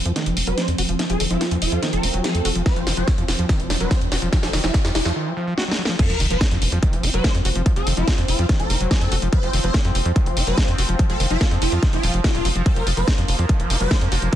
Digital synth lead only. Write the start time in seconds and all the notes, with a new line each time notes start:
0.47 C5
1.10 A4
1.30 F4
1.62 F4
1.93 A#4
2.24 A4
2.66 C5
2.97 C#5
3.80 C5
4.43 A#4
4.64 F4
4.95 F4
5.99 A#4
6.31 C5
7.14 C5
7.76 A4
7.97 F4
8.28 F4
8.60 A#4
8.91 A4
9.33 C5
9.64 C#5
10.47 C5
11.10 A#4
11.31 F4
11.62 F4
11.93 F4
12.24 F4
12.66 A#4
12.97 C5
13.80 C5